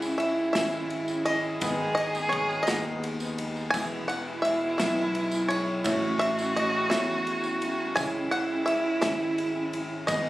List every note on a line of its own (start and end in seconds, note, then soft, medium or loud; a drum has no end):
0.00 0.51 C#2 loud
0.00 1.58 C#2 medium
0.00 1.58 C#3 medium
0.00 0.26 G#3 medium
0.00 5.82 G#3 medium
0.00 0.27 C#4 medium
0.00 0.18 C#4 medium
0.00 0.27 E4 medium
0.00 1.58 E4 medium
0.00 1.63 E4 loud
0.00 0.19 E4 soft
0.00 0.20 G#4 medium
0.00 0.27 C#5 medium
0.00 0.27 E5 medium
0.00 0.17 F#5 loud
0.00 tambourine medium
0.18 0.54 G#3 medium
0.18 0.55 C#4 medium
0.18 0.55 E4 medium
0.18 0.56 G#4 medium
0.18 0.52 E5 medium
0.18 ride medium
0.53 1.58 G#1 loud
0.53 0.73 C#3 medium
0.53 0.73 G#3 medium
0.53 1.33 G#3 medium
0.53 0.73 C#4 medium
0.53 1.33 C#4 medium
0.53 0.73 E4 medium
0.53 1.33 E4 medium
0.53 0.72 G#4 medium
0.53 1.33 C#5 medium
0.53 1.21 E5 medium
0.53 1.33 E5 medium
0.53 snare loud
0.53 ride medium
0.53 tambourine medium
0.72 1.09 C#4 soft
0.72 1.09 E4 medium
0.72 1.07 G#4 medium
0.72 tambourine soft
0.90 ride medium
1.08 1.25 C#4 soft
1.08 1.26 E4 soft
1.08 1.26 G#4 medium
1.08 tambourine medium
1.25 1.59 G#3 medium
1.25 1.61 C#4 medium
1.25 1.61 E4 medium
1.25 1.61 G#4 medium
1.25 1.94 D#5 medium
1.25 ride medium
1.60 2.64 G#1 medium
1.60 3.70 G#1 medium
1.60 1.78 G#2 medium
1.60 3.70 G#2 medium
1.60 3.72 B2 medium
1.60 1.79 D#3 medium
1.60 1.79 G#3 medium
1.60 2.39 G#3 medium
1.60 1.79 B3 medium
1.60 2.39 B3 medium
1.60 1.79 D#4 medium
1.60 3.71 D#4 medium
1.60 2.39 D#4 medium
1.60 3.38 G#4 loud
1.60 1.77 G#4 medium
1.60 2.39 B4 medium
1.60 2.39 D#5 medium
1.60 kick loud
1.60 ride medium
1.60 tambourine medium
1.79 2.14 G#3 soft
1.79 2.14 B3 soft
1.79 2.13 D#4 medium
1.79 2.12 G#4 medium
1.95 2.32 D#5 medium
1.95 ride medium
2.13 2.30 G#3 soft
2.13 2.30 B3 soft
2.13 2.31 D#4 soft
2.13 2.32 G#4 soft
2.13 tambourine medium
2.29 2.66 G#3 medium
2.29 2.67 B3 medium
2.29 2.67 D#4 medium
2.29 2.67 C#5 medium
2.29 kick medium
2.29 ride medium
2.33 2.67 G#4 medium
2.50 tambourine soft
2.63 3.41 D#5 medium
2.67 3.70 D#2 medium
2.67 2.85 G#2 medium
2.67 2.85 D#3 medium
2.67 2.85 G#3 medium
2.67 3.45 G#3 medium
2.67 3.45 B3 medium
2.67 2.85 B3 medium
2.67 3.45 D#4 medium
2.67 2.84 D#4 medium
2.67 2.83 G#4 medium
2.67 3.45 B4 medium
2.67 3.45 F#5 medium
2.67 snare loud
2.67 ride medium
2.67 tambourine medium
2.84 3.21 G#3 soft
2.84 3.20 B3 soft
2.84 3.19 D#4 soft
2.84 3.19 G#4 medium
3.04 ride medium
3.04 tambourine soft
3.20 3.37 G#3 soft
3.20 3.38 B3 soft
3.20 3.38 D#4 medium
3.20 3.38 G#4 medium
3.20 tambourine medium
3.38 3.74 G#3 medium
3.38 3.74 B3 medium
3.38 3.75 D#4 medium
3.38 3.75 G#4 medium
3.38 ride medium
3.56 tambourine soft
3.70 4.76 E1 medium
3.70 5.81 E2 medium
3.70 3.91 E2 medium
3.70 5.83 B2 medium
3.70 5.82 E3 medium
3.70 3.92 E3 medium
3.70 4.51 G#3 medium
3.70 4.51 B3 medium
3.70 10.04 E4 medium
3.70 4.51 E4 medium
3.70 5.86 E4 loud
3.70 4.51 B4 medium
3.70 4.51 E5 medium
3.70 4.07 G#5 loud
3.70 kick loud
3.70 ride medium
3.70 tambourine loud
3.75 3.92 G#3 medium
3.75 3.92 B3 medium
3.75 3.92 E4 medium
3.75 3.91 G#4 medium
3.92 4.28 G#3 soft
3.92 4.28 B3 soft
3.92 4.27 E4 medium
3.92 4.26 G#4 soft
4.08 4.42 F#5 medium
4.08 ride medium
4.27 4.44 G#3 soft
4.27 4.45 B3 medium
4.27 4.45 E4 medium
4.27 4.44 G#4 medium
4.42 4.79 G#3 medium
4.42 4.80 B3 medium
4.42 4.80 E4 medium
4.42 4.77 E5 medium
4.42 ride medium
4.47 4.81 G#4 medium
4.78 5.81 B1 medium
4.78 4.98 E2 medium
4.78 4.98 E3 medium
4.78 5.57 G#3 medium
4.78 4.98 G#3 medium
4.78 5.57 B3 medium
4.78 4.98 B3 medium
4.78 5.57 E4 medium
4.78 4.97 E4 medium
4.78 4.96 G#4 medium
4.78 5.57 B4 medium
4.78 5.51 E5 medium
4.78 5.57 E5 medium
4.78 snare loud
4.78 ride medium
4.78 tambourine medium
4.97 5.33 G#3 soft
4.97 5.33 B3 soft
4.97 5.33 E4 medium
4.97 5.32 G#4 medium
4.97 tambourine soft
5.15 ride medium
5.31 5.49 G#3 soft
5.31 5.49 B3 soft
5.31 5.50 E4 soft
5.31 5.50 G#4 medium
5.31 tambourine medium
5.48 5.85 G#3 medium
5.48 5.86 B3 medium
5.48 5.86 E4 medium
5.48 5.86 G#4 medium
5.48 6.22 C#5 medium
5.48 ride medium
5.84 7.92 A1 medium
5.84 6.87 A1 medium
5.84 7.92 A2 medium
5.84 6.03 A2 medium
5.84 10.04 C#3 medium
5.84 6.62 A3 medium
5.84 7.95 A3 medium
5.84 6.03 A3 medium
5.84 6.62 C#4 medium
5.84 6.03 C#4 medium
5.84 6.62 E4 medium
5.84 6.03 E4 medium
5.84 7.98 F#4 loud
5.84 6.01 A4 medium
5.84 6.62 C#5 medium
5.84 6.62 E5 medium
5.84 kick loud
5.84 ride medium
5.84 tambourine medium
6.03 6.39 C#4 soft
6.03 6.38 E4 medium
6.03 6.36 A4 medium
6.19 6.56 E5 medium
6.19 ride medium
6.38 6.55 C#4 soft
6.38 6.56 E4 medium
6.38 6.56 A4 medium
6.38 tambourine medium
6.55 6.90 A3 medium
6.55 6.90 C#4 medium
6.55 6.90 E4 medium
6.55 6.90 A4 medium
6.55 6.92 D#5 medium
6.55 ride medium
6.90 7.93 E2 medium
6.90 7.08 A2 medium
6.90 7.68 A3 medium
6.90 7.09 A3 medium
6.90 7.68 C#4 medium
6.90 7.08 C#4 medium
6.90 7.68 E4 medium
6.90 7.07 E4 medium
6.90 7.06 A4 medium
6.90 7.68 C#5 medium
6.90 7.66 E5 medium
6.90 7.68 E5 medium
6.90 snare loud
6.90 ride medium
6.90 tambourine medium
7.07 7.43 C#4 soft
7.07 7.42 E4 medium
7.07 7.41 A4 medium
7.07 tambourine soft
7.27 ride medium
7.42 7.59 C#4 soft
7.42 7.60 E4 medium
7.42 7.61 A4 medium
7.42 tambourine medium
7.59 7.95 A3 medium
7.59 7.94 C#4 medium
7.59 7.95 E4 medium
7.59 7.96 A4 medium
7.59 ride medium
7.94 10.04 C#2 medium
7.94 8.99 C#2 medium
7.94 8.13 C#3 medium
7.94 10.04 C#3 medium
7.94 8.14 G#3 medium
7.94 8.74 G#3 medium
7.94 10.29 G#3 medium
7.94 8.14 C#4 medium
7.94 8.74 C#4 medium
7.94 8.13 E4 medium
7.94 8.74 E4 medium
7.94 10.09 E4 loud
7.94 8.12 G#4 medium
7.94 8.74 C#5 medium
7.94 8.74 E5 medium
7.94 8.31 G#5 loud
7.94 kick loud
7.94 ride medium
7.94 tambourine loud
8.13 8.50 C#4 soft
8.13 8.49 E4 soft
8.13 8.47 G#4 soft
8.31 8.64 F#5 medium
8.31 ride medium
8.48 8.66 C#4 soft
8.48 8.66 E4 medium
8.48 8.66 G#4 medium
8.66 9.00 G#3 medium
8.66 9.01 C#4 medium
8.66 9.01 E4 medium
8.66 9.01 G#4 medium
8.66 8.99 E5 medium
8.66 ride medium
9.01 10.04 G#1 medium
9.01 9.20 C#3 medium
9.01 9.79 G#3 medium
9.01 9.20 G#3 medium
9.01 9.79 C#4 medium
9.01 9.20 C#4 medium
9.01 9.79 E4 medium
9.01 9.19 E4 medium
9.01 9.18 G#4 medium
9.01 9.79 C#5 medium
9.01 10.04 E5 medium
9.01 9.79 E5 medium
9.01 snare loud
9.01 ride medium
9.01 tambourine medium
9.20 9.56 C#4 soft
9.20 9.55 E4 soft
9.20 9.54 G#4 medium
9.38 ride medium
9.55 9.72 C#4 soft
9.55 9.73 E4 medium
9.55 9.73 G#4 medium
9.72 10.07 G#3 medium
9.72 10.07 C#4 medium
9.72 10.08 E4 medium
9.72 10.07 G#4 medium
9.72 ride medium
10.07 10.29 G#1 medium
10.07 10.29 G#1 loud
10.07 10.25 G#2 medium
10.07 10.29 G#2 medium
10.07 10.29 B2 medium
10.07 10.25 D#3 medium
10.07 10.26 G#3 medium
10.07 10.29 G#3 medium
10.07 10.29 B3 medium
10.07 10.25 B3 medium
10.07 10.29 B3 medium
10.07 10.29 D#4 medium
10.07 10.25 D#4 medium
10.07 10.29 D#4 loud
10.07 10.24 G#4 medium
10.07 10.29 B4 medium
10.07 10.29 D#5 medium
10.07 kick loud
10.07 ride loud
10.07 tambourine medium
10.25 10.29 B3 soft
10.25 10.29 D#4 soft
10.25 10.29 G#4 medium